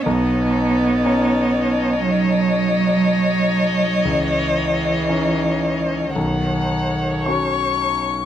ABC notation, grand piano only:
X:1
M:4/4
L:1/8
Q:1/4=59
K:Bmix
V:1 name="Grand piano"
B,,,2 [CDc]6 | C,,2 [CDc]2 B,,,2 [CFcc']2 |]